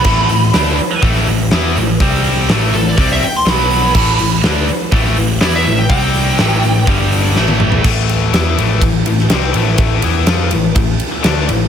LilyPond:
<<
  \new Staff \with { instrumentName = "Lead electric guitar" } { \time 4/4 \key a \minor \tempo 4 = 123 b''2 r2 | r4. a'16 d''8 e''16 g''16 c'''16 b''4~ | b''2 r4 d''16 e''8 g''16 | g''2 r2 |
r1 | r1 | }
  \new Staff \with { instrumentName = "Distorted electric guitar" } { \clef bass \time 4/4 \key a \minor <a, e a>8 <a, e>8 <d a d'>8 r8 <a, e a>8 <a, e>8 <e b e'>8 <a, e>8 | <c g c'>4 <a, e a>8 <a, e>8 <c g c'>8 r8 <b, fis b>4 | <a, e a>8 <a, e>8 <d a d'>8 r8 <a, e a>8 <a, e>8 <e b e'>8 <a, e>8 | <c g c'>4 <a, e a>8 <a, e>8 <g, d g>4 <a, e a>4 |
<a, e a>4 <e b e'>8 <a, e a>8 <a, e>8 <a, e>8 <c g c'>8 <a, e a>8~ | <a, e a>8 <e b e'>8 <f c' f'>8 <a, e>8 <a, e>8 r8 <d a d'>8 <a, e>8 | }
  \new Staff \with { instrumentName = "Distorted electric guitar" } { \clef bass \time 4/4 \key a \minor <a, e a>8 <a, e>8 <d a d'>8 r8 <a, e a>8 <a, e>8 <e b e'>8 <a, e>8 | <c g c'>4 <a, e a>8 <a, e>8 <c g c'>8 r8 <b, fis b>4 | <a, e a>8 <a, e>8 <d a d'>8 r8 <a, e a>8 <a, e>8 <e b e'>8 <a, e>8 | <c g c'>4 <a, e a>8 <a, e>8 <g, d g>4 <a, e a>4 |
r1 | r1 | }
  \new Staff \with { instrumentName = "Picked electric bass" } { \clef bass \time 4/4 \key a \minor a,,8 a,,8 d,8 r8 a,,8 a,,8 e,8 a,,8 | c,4 a,,8 a,,8 c,8 r8 b,,4 | a,,8 a,,8 d,8 r8 a,,8 a,,8 e,8 a,,8 | c,4 a,,8 a,,8 g,,4 a,,4 |
a,,4 e,8 a,,8 a,,8 a,,8 c,8 a,,8~ | a,,8 e,8 f,8 a,,8 a,,8 r8 d,8 a,,8 | }
  \new DrumStaff \with { instrumentName = "Drums" } \drummode { \time 4/4 <cymc bd>8 hho8 <hho sn>8 hho8 <hho bd>16 sn16 hho8 <hho sn>8 hho8 | <hho bd>8 hho8 <hho sn>8 hho8 <hho bd>16 sn16 hho8 <hho sn>8 hho8 | <cymc bd>8 hho8 <hho sn>8 hho8 <hho bd>16 sn16 hho8 <hho sn>8 hho8 | <hho bd>8 hho8 <hho sn>8 hho8 <hho bd>8 hho8 sn16 tommh16 toml16 tomfh16 |
<cymc bd>8 cymr8 <cymr sn>8 cymr8 <bd cymr>8 cymr16 sn16 <cymr sn>8 cymr8 | <bd cymr>8 cymr8 <cymr sn>8 cymr8 <bd cymr>8 cymr8 <cymr sn>8 cymr8 | }
>>